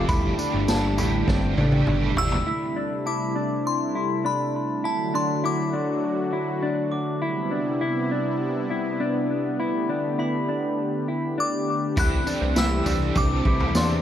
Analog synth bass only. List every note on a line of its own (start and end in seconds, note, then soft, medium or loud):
0.09 0.35 G1 loud
0.54 0.67 G1 medium
0.69 1.00 G1 loud
0.98 1.24 A1 medium
1.28 1.54 G1 loud
1.57 1.83 A1 medium
1.87 2.13 G1 loud
2.17 2.43 G1 loud
11.97 12.23 C2 loud
12.41 12.55 C2 medium
12.56 12.82 C2 loud
12.86 13.12 C2 loud
13.16 13.42 C2 loud
13.45 13.72 C2 loud
13.75 14.01 E2 loud